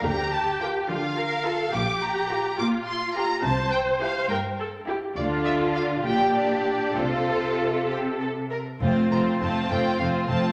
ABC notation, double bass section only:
X:1
M:6/8
L:1/8
Q:3/8=69
K:Bb
V:1 name="Double bass section" clef=bass
D,,2 z4 | [K:F] B,,,2 z4 | C,,2 z4 | D,,2 z B,,,2 z |
C,,2 z4 | F,,, F,,, F,,, F,,, F,,, F,,, |]